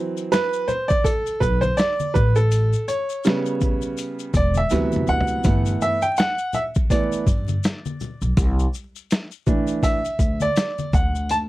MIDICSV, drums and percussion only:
0, 0, Header, 1, 2, 480
1, 0, Start_track
1, 0, Key_signature, 1, "major"
1, 0, Tempo, 731707
1, 1652, Time_signature, 4, 2, 24, 8
1, 7536, End_track
2, 0, Start_track
2, 0, Title_t, "Drums"
2, 113, Note_on_c, 9, 82, 39
2, 178, Note_off_c, 9, 82, 0
2, 211, Note_on_c, 9, 42, 63
2, 214, Note_on_c, 9, 82, 61
2, 221, Note_on_c, 9, 38, 94
2, 277, Note_off_c, 9, 42, 0
2, 279, Note_off_c, 9, 82, 0
2, 287, Note_off_c, 9, 38, 0
2, 350, Note_on_c, 9, 82, 42
2, 415, Note_off_c, 9, 82, 0
2, 448, Note_on_c, 9, 64, 59
2, 448, Note_on_c, 9, 82, 45
2, 452, Note_off_c, 9, 82, 0
2, 452, Note_on_c, 9, 82, 48
2, 514, Note_off_c, 9, 64, 0
2, 518, Note_off_c, 9, 82, 0
2, 588, Note_on_c, 9, 82, 43
2, 594, Note_on_c, 9, 36, 89
2, 653, Note_off_c, 9, 82, 0
2, 659, Note_off_c, 9, 36, 0
2, 686, Note_on_c, 9, 36, 71
2, 691, Note_on_c, 9, 82, 71
2, 696, Note_on_c, 9, 42, 61
2, 752, Note_off_c, 9, 36, 0
2, 757, Note_off_c, 9, 82, 0
2, 762, Note_off_c, 9, 42, 0
2, 830, Note_on_c, 9, 82, 41
2, 896, Note_off_c, 9, 82, 0
2, 925, Note_on_c, 9, 36, 79
2, 933, Note_on_c, 9, 82, 51
2, 991, Note_off_c, 9, 36, 0
2, 999, Note_off_c, 9, 82, 0
2, 1064, Note_on_c, 9, 63, 71
2, 1064, Note_on_c, 9, 82, 43
2, 1130, Note_off_c, 9, 63, 0
2, 1130, Note_off_c, 9, 82, 0
2, 1165, Note_on_c, 9, 82, 60
2, 1171, Note_on_c, 9, 42, 73
2, 1177, Note_on_c, 9, 38, 102
2, 1231, Note_off_c, 9, 82, 0
2, 1237, Note_off_c, 9, 42, 0
2, 1243, Note_off_c, 9, 38, 0
2, 1311, Note_on_c, 9, 63, 64
2, 1311, Note_on_c, 9, 82, 44
2, 1376, Note_off_c, 9, 63, 0
2, 1376, Note_off_c, 9, 82, 0
2, 1409, Note_on_c, 9, 82, 52
2, 1412, Note_on_c, 9, 36, 110
2, 1413, Note_off_c, 9, 82, 0
2, 1413, Note_on_c, 9, 64, 57
2, 1413, Note_on_c, 9, 82, 42
2, 1478, Note_off_c, 9, 36, 0
2, 1479, Note_off_c, 9, 64, 0
2, 1479, Note_off_c, 9, 82, 0
2, 1546, Note_on_c, 9, 82, 44
2, 1612, Note_off_c, 9, 82, 0
2, 1650, Note_on_c, 9, 82, 61
2, 1651, Note_on_c, 9, 42, 78
2, 1716, Note_off_c, 9, 82, 0
2, 1717, Note_off_c, 9, 42, 0
2, 1792, Note_on_c, 9, 82, 44
2, 1857, Note_off_c, 9, 82, 0
2, 1892, Note_on_c, 9, 42, 53
2, 1892, Note_on_c, 9, 82, 59
2, 1958, Note_off_c, 9, 42, 0
2, 1958, Note_off_c, 9, 82, 0
2, 2031, Note_on_c, 9, 82, 46
2, 2096, Note_off_c, 9, 82, 0
2, 2126, Note_on_c, 9, 82, 60
2, 2135, Note_on_c, 9, 42, 64
2, 2146, Note_on_c, 9, 38, 107
2, 2192, Note_off_c, 9, 82, 0
2, 2201, Note_off_c, 9, 42, 0
2, 2211, Note_off_c, 9, 38, 0
2, 2269, Note_on_c, 9, 82, 37
2, 2335, Note_off_c, 9, 82, 0
2, 2367, Note_on_c, 9, 64, 59
2, 2367, Note_on_c, 9, 82, 42
2, 2369, Note_off_c, 9, 82, 0
2, 2369, Note_on_c, 9, 82, 48
2, 2372, Note_on_c, 9, 36, 87
2, 2433, Note_off_c, 9, 64, 0
2, 2434, Note_off_c, 9, 82, 0
2, 2438, Note_off_c, 9, 36, 0
2, 2504, Note_on_c, 9, 82, 48
2, 2569, Note_off_c, 9, 82, 0
2, 2608, Note_on_c, 9, 82, 56
2, 2615, Note_on_c, 9, 42, 66
2, 2673, Note_off_c, 9, 82, 0
2, 2681, Note_off_c, 9, 42, 0
2, 2751, Note_on_c, 9, 82, 45
2, 2816, Note_off_c, 9, 82, 0
2, 2845, Note_on_c, 9, 36, 95
2, 2846, Note_on_c, 9, 82, 45
2, 2854, Note_off_c, 9, 82, 0
2, 2854, Note_on_c, 9, 42, 51
2, 2854, Note_on_c, 9, 82, 47
2, 2911, Note_off_c, 9, 36, 0
2, 2920, Note_off_c, 9, 42, 0
2, 2920, Note_off_c, 9, 82, 0
2, 2981, Note_on_c, 9, 63, 63
2, 2981, Note_on_c, 9, 82, 47
2, 3047, Note_off_c, 9, 63, 0
2, 3047, Note_off_c, 9, 82, 0
2, 3083, Note_on_c, 9, 82, 59
2, 3090, Note_on_c, 9, 42, 75
2, 3102, Note_on_c, 9, 38, 48
2, 3148, Note_off_c, 9, 82, 0
2, 3156, Note_off_c, 9, 42, 0
2, 3167, Note_off_c, 9, 38, 0
2, 3229, Note_on_c, 9, 63, 59
2, 3229, Note_on_c, 9, 82, 44
2, 3255, Note_on_c, 9, 45, 55
2, 3294, Note_off_c, 9, 63, 0
2, 3294, Note_off_c, 9, 82, 0
2, 3321, Note_off_c, 9, 45, 0
2, 3327, Note_on_c, 9, 64, 61
2, 3327, Note_on_c, 9, 82, 37
2, 3331, Note_off_c, 9, 82, 0
2, 3331, Note_on_c, 9, 82, 51
2, 3393, Note_off_c, 9, 64, 0
2, 3396, Note_off_c, 9, 82, 0
2, 3415, Note_on_c, 9, 43, 108
2, 3461, Note_on_c, 9, 82, 44
2, 3481, Note_off_c, 9, 43, 0
2, 3526, Note_off_c, 9, 82, 0
2, 3567, Note_on_c, 9, 82, 57
2, 3573, Note_on_c, 9, 42, 78
2, 3574, Note_on_c, 9, 36, 116
2, 3632, Note_off_c, 9, 82, 0
2, 3639, Note_off_c, 9, 36, 0
2, 3639, Note_off_c, 9, 42, 0
2, 3711, Note_on_c, 9, 82, 47
2, 3777, Note_off_c, 9, 82, 0
2, 3814, Note_on_c, 9, 82, 53
2, 3880, Note_off_c, 9, 82, 0
2, 3948, Note_on_c, 9, 82, 44
2, 4014, Note_off_c, 9, 82, 0
2, 4047, Note_on_c, 9, 82, 70
2, 4056, Note_on_c, 9, 42, 70
2, 4066, Note_on_c, 9, 38, 100
2, 4113, Note_off_c, 9, 82, 0
2, 4121, Note_off_c, 9, 42, 0
2, 4132, Note_off_c, 9, 38, 0
2, 4188, Note_on_c, 9, 82, 41
2, 4254, Note_off_c, 9, 82, 0
2, 4286, Note_on_c, 9, 64, 63
2, 4286, Note_on_c, 9, 82, 49
2, 4294, Note_off_c, 9, 82, 0
2, 4294, Note_on_c, 9, 82, 50
2, 4351, Note_off_c, 9, 64, 0
2, 4360, Note_off_c, 9, 82, 0
2, 4429, Note_on_c, 9, 82, 50
2, 4436, Note_on_c, 9, 36, 93
2, 4494, Note_off_c, 9, 82, 0
2, 4502, Note_off_c, 9, 36, 0
2, 4528, Note_on_c, 9, 36, 82
2, 4531, Note_on_c, 9, 82, 67
2, 4538, Note_on_c, 9, 42, 71
2, 4594, Note_off_c, 9, 36, 0
2, 4596, Note_off_c, 9, 82, 0
2, 4604, Note_off_c, 9, 42, 0
2, 4672, Note_on_c, 9, 82, 46
2, 4738, Note_off_c, 9, 82, 0
2, 4766, Note_on_c, 9, 36, 82
2, 4770, Note_on_c, 9, 82, 47
2, 4776, Note_off_c, 9, 82, 0
2, 4776, Note_on_c, 9, 82, 53
2, 4832, Note_off_c, 9, 36, 0
2, 4841, Note_off_c, 9, 82, 0
2, 4908, Note_on_c, 9, 63, 62
2, 4908, Note_on_c, 9, 82, 48
2, 4974, Note_off_c, 9, 63, 0
2, 4974, Note_off_c, 9, 82, 0
2, 5009, Note_on_c, 9, 82, 62
2, 5013, Note_on_c, 9, 42, 73
2, 5019, Note_on_c, 9, 38, 95
2, 5074, Note_off_c, 9, 82, 0
2, 5078, Note_off_c, 9, 42, 0
2, 5085, Note_off_c, 9, 38, 0
2, 5154, Note_on_c, 9, 63, 65
2, 5154, Note_on_c, 9, 82, 48
2, 5219, Note_off_c, 9, 63, 0
2, 5219, Note_off_c, 9, 82, 0
2, 5248, Note_on_c, 9, 82, 48
2, 5255, Note_off_c, 9, 82, 0
2, 5255, Note_on_c, 9, 64, 62
2, 5255, Note_on_c, 9, 82, 41
2, 5320, Note_off_c, 9, 64, 0
2, 5320, Note_off_c, 9, 82, 0
2, 5390, Note_on_c, 9, 82, 47
2, 5455, Note_off_c, 9, 82, 0
2, 5491, Note_on_c, 9, 42, 78
2, 5493, Note_on_c, 9, 36, 121
2, 5497, Note_on_c, 9, 82, 54
2, 5557, Note_off_c, 9, 42, 0
2, 5558, Note_off_c, 9, 36, 0
2, 5562, Note_off_c, 9, 82, 0
2, 5638, Note_on_c, 9, 82, 52
2, 5704, Note_off_c, 9, 82, 0
2, 5728, Note_on_c, 9, 82, 59
2, 5738, Note_off_c, 9, 82, 0
2, 5738, Note_on_c, 9, 82, 49
2, 5804, Note_off_c, 9, 82, 0
2, 5877, Note_on_c, 9, 82, 41
2, 5942, Note_off_c, 9, 82, 0
2, 5974, Note_on_c, 9, 42, 68
2, 5976, Note_on_c, 9, 82, 64
2, 5984, Note_on_c, 9, 38, 98
2, 6040, Note_off_c, 9, 42, 0
2, 6042, Note_off_c, 9, 82, 0
2, 6050, Note_off_c, 9, 38, 0
2, 6110, Note_on_c, 9, 82, 38
2, 6176, Note_off_c, 9, 82, 0
2, 6210, Note_on_c, 9, 64, 61
2, 6210, Note_on_c, 9, 82, 45
2, 6211, Note_off_c, 9, 82, 0
2, 6211, Note_on_c, 9, 82, 43
2, 6212, Note_on_c, 9, 36, 90
2, 6276, Note_off_c, 9, 64, 0
2, 6277, Note_off_c, 9, 82, 0
2, 6278, Note_off_c, 9, 36, 0
2, 6346, Note_on_c, 9, 82, 44
2, 6412, Note_off_c, 9, 82, 0
2, 6447, Note_on_c, 9, 36, 82
2, 6450, Note_on_c, 9, 82, 64
2, 6456, Note_on_c, 9, 42, 75
2, 6512, Note_off_c, 9, 36, 0
2, 6516, Note_off_c, 9, 82, 0
2, 6522, Note_off_c, 9, 42, 0
2, 6593, Note_on_c, 9, 82, 47
2, 6659, Note_off_c, 9, 82, 0
2, 6685, Note_on_c, 9, 36, 79
2, 6688, Note_on_c, 9, 82, 50
2, 6693, Note_off_c, 9, 82, 0
2, 6693, Note_on_c, 9, 82, 51
2, 6751, Note_off_c, 9, 36, 0
2, 6759, Note_off_c, 9, 82, 0
2, 6825, Note_on_c, 9, 63, 63
2, 6825, Note_on_c, 9, 82, 47
2, 6891, Note_off_c, 9, 63, 0
2, 6891, Note_off_c, 9, 82, 0
2, 6930, Note_on_c, 9, 42, 86
2, 6930, Note_on_c, 9, 82, 64
2, 6937, Note_on_c, 9, 38, 101
2, 6995, Note_off_c, 9, 82, 0
2, 6996, Note_off_c, 9, 42, 0
2, 7002, Note_off_c, 9, 38, 0
2, 7076, Note_on_c, 9, 63, 63
2, 7076, Note_on_c, 9, 82, 45
2, 7141, Note_off_c, 9, 63, 0
2, 7141, Note_off_c, 9, 82, 0
2, 7169, Note_on_c, 9, 82, 49
2, 7172, Note_on_c, 9, 36, 101
2, 7179, Note_off_c, 9, 82, 0
2, 7179, Note_on_c, 9, 64, 53
2, 7179, Note_on_c, 9, 82, 44
2, 7238, Note_off_c, 9, 36, 0
2, 7245, Note_off_c, 9, 64, 0
2, 7245, Note_off_c, 9, 82, 0
2, 7317, Note_on_c, 9, 82, 49
2, 7382, Note_off_c, 9, 82, 0
2, 7409, Note_on_c, 9, 42, 77
2, 7420, Note_on_c, 9, 82, 62
2, 7474, Note_off_c, 9, 42, 0
2, 7486, Note_off_c, 9, 82, 0
2, 7536, End_track
0, 0, End_of_file